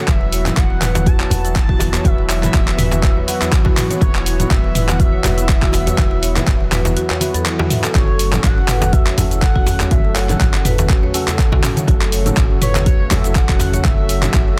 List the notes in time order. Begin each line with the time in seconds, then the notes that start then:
Already playing: F#3
0.02 F#5
0.08 E1 E3 B3 E4 F#4 B4 E5, kick, clap, closed hi-hat, high conga, low conga, cabasa
0.21 muted conga
0.32 C#5, open hi-hat, cabasa
0.45 E4 F#4 B4, clap, closed hi-hat, muted conga, high conga, low conga, cabasa
0.57 E1 F#4 F#5, kick, clap, closed hi-hat, low conga, cabasa
0.70 muted conga
0.82 B4, clap, mid tom, open hi-hat, cabasa
0.95 closed hi-hat, djembe slap, high conga, cabasa
1.06 F#4 A5, kick, closed hi-hat, djembe tone, cabasa
1.20 C#5, clap
1.30 E1 E4 F#4 B4 F#5, open hi-hat, muted conga, djembe tone, high conga, low conga, cabasa
1.45 E4, closed hi-hat, cabasa
1.56 A5, kick, clap, closed hi-hat, cabasa
1.69 F#4, kick, high conga
1.79 open hi-hat, djembe slap, djembe tone, high conga, cabasa
1.93 C#5, clap, closed hi-hat, muted conga, djembe tone, cabasa
2.04 E1 E4 F#4 B4 E5, kick, closed hi-hat, high conga, low conga, cabasa
2.18 muted conga
2.29 C#5 E5, clap, open hi-hat, cabasa
2.43 E4 F#4 B4, clap, closed hi-hat, muted conga, high conga, low conga, cabasa
2.54 E1 F#4, kick, clap, closed hi-hat, low conga, cabasa
2.68 clap, muted conga
2.78 B4, mid tom, open hi-hat, djembe tone, cabasa
2.91 closed hi-hat, djembe slap, high conga, cabasa
3.03 F#4, kick, clap, closed hi-hat, cabasa
3.16 C#5, djembe tone
3.27 E4 F#4 B4 F#5, open hi-hat, muted conga, cabasa
3.41 E4, clap, closed hi-hat, djembe tone, cabasa
3.52 kick, clap, closed hi-hat, muted conga, cabasa
3.65 F#4, kick, djembe slap, high conga
3.77 clap, mid tom, open hi-hat, cabasa
3.90 C#5, closed hi-hat, muted conga, high conga, cabasa
4.01 E1 E4 F#4 B4 C#5, kick, closed hi-hat, high conga, low conga, cabasa
4.15 clap, muted conga
4.26 C#5, open hi-hat, cabasa
4.39 E4 F#4 B4, closed hi-hat, muted conga, high conga, low conga, cabasa
4.50 E1 F#4 E5, kick, clap, closed hi-hat, low conga, cabasa
4.64 muted conga
4.75 B4, mid tom, open hi-hat, cabasa
4.88 F#5, clap, closed hi-hat, djembe slap, high conga, cabasa
4.99 F#4 E5, kick, closed hi-hat, djembe tone, cabasa
5.13 C#5
5.24 E1 E4 F#4 B4 F#5, clap, open hi-hat, muted conga, high conga, djembe tone, low conga, cabasa
5.37 E4, closed hi-hat, cabasa
5.49 kick, clap, closed hi-hat, muted conga, cabasa
5.62 F#4, kick, clap, high conga
5.72 open hi-hat, djembe slap, djembe tone, high conga, cabasa
5.86 C#5, closed hi-hat, muted conga, djembe tone, cabasa
5.97 E1 E4 F#4 B4, kick, clap, closed hi-hat, high conga, low conga, cabasa
6.11 muted conga
6.22 C#5, open hi-hat, cabasa
6.36 E4 F#4 B4, clap, closed hi-hat, muted conga, high conga, low conga, cabasa
6.47 E1 F#4, kick, clap, closed hi-hat, low conga, cabasa
6.60 muted conga
6.72 B4, clap, mid tom, open hi-hat, djembe tone, cabasa
6.85 closed hi-hat, djembe slap, high conga, cabasa
6.96 F#4, closed hi-hat, muted conga, cabasa
7.10 C#5, clap, djembe tone
7.20 E4 F#4 B4, open hi-hat, muted conga, high conga, cabasa
7.34 A4, closed hi-hat, djembe tone, cabasa
7.45 clap, closed hi-hat, muted conga, cabasa
7.59 F#4, djembe slap, high conga
7.70 E5, mid tom, open hi-hat, cabasa
7.84 A4, clap, closed hi-hat, muted conga, high conga, cabasa
7.94 F#1 C#3 F#3 A3 C#4 F#4 A4 C#5, kick, clap, closed hi-hat, high conga, low conga, cabasa
8.08 muted conga
8.19 C#5, open hi-hat, cabasa
8.32 C#4 F#4 A4, clap, closed hi-hat, muted conga, high conga, low conga, cabasa
8.44 F#1 F#4 F#5, kick, clap, closed hi-hat, low conga, cabasa
8.58 muted conga
8.68 B4, clap, mid tom, open hi-hat, cabasa
8.81 closed hi-hat, djembe slap, high conga, cabasa
8.92 F#4 E5, kick, closed hi-hat, muted conga, djembe tone, cabasa
9.06 C#5, clap
9.17 F#1 C#4 F#4 A4 F#5, open hi-hat, muted conga, high conga, djembe tone, low conga, cabasa
9.31 E4, closed hi-hat, cabasa
9.41 F#5, kick, clap, closed hi-hat, cabasa
9.55 F#4, kick, high conga
9.66 open hi-hat, djembe slap, djembe tone, high conga, cabasa
9.80 C#5, clap, closed hi-hat, muted conga, djembe tone, cabasa
9.90 F#1 C#4 F#4 A4 E5, kick, closed hi-hat, high conga, low conga, cabasa
10.05 muted conga
10.15 C#5 F#5, clap, open hi-hat, cabasa
10.29 C#4 F#4 A4, clap, closed hi-hat, muted conga, high conga, low conga, cabasa
10.40 F#1 F#4, kick, clap, closed hi-hat, low conga, cabasa
10.54 clap, muted conga
10.65 B4, mid tom, open hi-hat, djembe tone, cabasa
10.78 closed hi-hat, djembe slap, high conga, cabasa
10.89 F#4, kick, clap, closed hi-hat, cabasa
11.03 C#5, djembe tone
11.14 C#4 F#4 A4 F#5, open hi-hat, muted conga, cabasa
11.27 E4, clap, closed hi-hat, djembe tone, cabasa
11.39 kick, clap, closed hi-hat, cabasa
11.52 F#4, kick, djembe slap, high conga
11.64 clap, mid tom, open hi-hat, cabasa
11.76 C#5, closed hi-hat, muted conga, high conga, cabasa
11.87 F#1 C#4 F#4 A4, kick, closed hi-hat, high conga, low conga, cabasa
12.01 clap, muted conga
12.12 C#5, open hi-hat, cabasa
12.26 C#4 F#4 A4, closed hi-hat, muted conga, high conga, low conga, cabasa
12.37 F#1 F#4, kick, clap, closed hi-hat, low conga, cabasa
12.51 muted conga
12.62 B4 C#5, mid tom, open hi-hat, cabasa
12.75 clap, closed hi-hat, djembe slap, high conga, cabasa
12.86 F#4, kick, closed hi-hat, muted conga, djembe tone, cabasa
13.00 C#5
13.11 F#1 C#4 F#4 A4 E5 F#5, clap, open hi-hat, muted conga, djembe tone, high conga, low conga, cabasa
13.24 E4, closed hi-hat, cabasa
13.35 F#5, kick, clap, closed hi-hat, muted conga, cabasa
13.48 F#4, kick, clap, high conga
13.59 open hi-hat, djembe slap, high conga, djembe tone, cabasa
13.73 C#5, closed hi-hat, muted conga, djembe tone, cabasa
13.84 F#1 F#4 A4 E5, kick, clap, closed hi-hat, high conga, low conga, cabasa
13.98 muted conga
14.09 C#5, open hi-hat, cabasa
14.22 C#4 F#4 A4, clap, closed hi-hat, muted conga, high conga, low conga, cabasa
14.34 F#1 F#4, kick, clap, closed hi-hat, low conga, cabasa
14.48 muted conga